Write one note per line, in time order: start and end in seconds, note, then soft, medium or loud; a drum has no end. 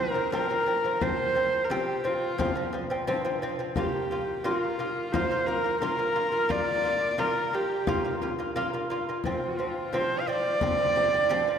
0.00 0.12 F3 medium
0.00 0.12 C4 medium
0.00 0.32 A#4 loud
0.14 0.29 F3 medium
0.14 0.29 C4 medium
0.32 0.46 F3 medium
0.32 0.47 C4 loud
0.32 1.03 A#4 medium
0.32 frame drum medium
0.50 0.63 F3 medium
0.50 0.64 C4 medium
0.66 0.80 F3 medium
0.66 0.81 C4 medium
0.84 0.98 F3 medium
0.84 0.98 C4 medium
1.01 1.29 F3 medium
1.01 1.29 C4 medium
1.01 1.65 C5 medium
1.01 frame drum medium
1.35 1.63 F3 medium
1.35 1.63 C4 medium
1.35 frame drum soft
1.64 1.73 A#4 medium
1.70 1.97 F3 medium
1.70 1.98 C4 loud
1.70 2.08 G4 medium
1.70 frame drum medium
2.04 2.31 F3 medium
2.04 2.32 C4 medium
2.04 2.74 F4 medium
2.04 frame drum soft
2.38 2.52 F3 medium
2.38 2.53 C4 loud
2.38 frame drum medium
2.55 2.69 F3 medium
2.55 2.70 C4 medium
2.73 2.86 F3 medium
2.73 2.87 C4 medium
2.73 frame drum soft
2.90 3.04 F3 medium
2.90 3.04 C4 medium
3.07 3.21 F3 loud
3.07 3.21 C4 loud
3.07 frame drum medium
3.25 3.38 F3 medium
3.25 3.39 C4 medium
3.42 3.55 F3 medium
3.42 3.56 C4 loud
3.42 frame drum soft
3.59 3.72 F3 medium
3.59 3.73 C4 medium
3.76 4.04 A#3 medium
3.76 4.04 F4 medium
3.76 4.45 G4 medium
3.76 frame drum medium
4.10 4.38 A#3 medium
4.10 4.38 F4 medium
4.10 frame drum soft
4.44 4.72 A#3 loud
4.44 5.14 F4 medium
4.44 4.72 F4 loud
4.44 frame drum soft
4.79 5.06 A#3 medium
4.79 5.06 F4 medium
5.12 5.27 A#3 loud
5.12 5.27 F4 loud
5.12 5.48 C5 medium
5.12 frame drum medium
5.31 5.44 A#3 medium
5.31 5.44 F4 medium
5.46 5.61 A#3 medium
5.46 5.61 F4 medium
5.46 5.80 A#4 loud
5.46 frame drum soft
5.64 5.78 A#3 medium
5.64 5.78 F4 medium
5.81 5.95 A#3 medium
5.81 5.96 F4 loud
5.81 6.52 A#4 loud
5.81 frame drum medium
5.99 6.12 A#3 medium
5.99 6.12 F4 medium
6.16 6.29 A#3 medium
6.16 6.29 F4 medium
6.16 frame drum soft
6.32 6.46 A#3 medium
6.32 6.46 F4 medium
6.49 6.77 A#3 medium
6.49 6.77 F4 loud
6.49 7.21 D5 loud
6.49 frame drum medium
6.84 7.11 A#3 medium
6.84 7.12 F4 medium
6.84 frame drum soft
7.18 7.46 A#3 medium
7.18 7.46 F4 loud
7.18 7.56 A#4 loud
7.18 frame drum medium
7.53 7.80 A#3 medium
7.53 7.81 F4 medium
7.53 8.22 G4 medium
7.53 frame drum soft
7.87 8.01 A#3 medium
7.87 8.01 F4 loud
7.87 frame drum medium
8.04 8.18 A#3 medium
8.04 8.18 F4 medium
8.22 8.35 A#3 medium
8.22 8.36 F4 medium
8.22 frame drum medium
8.39 8.52 A#3 medium
8.39 8.53 F4 medium
8.56 8.69 A#3 loud
8.56 8.70 F4 loud
8.56 frame drum medium
8.73 8.87 A#3 medium
8.73 8.87 F4 medium
8.90 9.04 A#3 medium
8.90 9.04 F4 medium
8.90 frame drum soft
9.09 9.22 A#3 medium
9.09 9.22 F4 medium
9.24 9.52 F3 medium
9.24 9.53 C4 medium
9.24 9.96 F4 medium
9.24 frame drum medium
9.58 9.86 F3 medium
9.58 9.86 C4 medium
9.58 frame drum soft
9.93 10.20 F3 medium
9.93 10.21 C4 loud
9.93 10.21 C5 medium
9.93 frame drum medium
10.20 10.29 F5 medium
10.27 10.55 F3 medium
10.27 10.55 C4 medium
10.27 11.59 D5 loud
10.27 frame drum soft
10.61 10.75 F3 medium
10.61 10.76 C4 loud
10.61 frame drum medium
10.78 10.92 F3 medium
10.78 10.93 C4 medium
10.96 11.10 F3 medium
10.96 11.10 C4 medium
10.96 frame drum medium
11.13 11.27 F3 medium
11.13 11.27 C4 medium
11.29 11.43 F3 loud
11.29 11.44 C4 loud
11.29 frame drum medium
11.47 11.59 F3 medium
11.47 11.59 C4 medium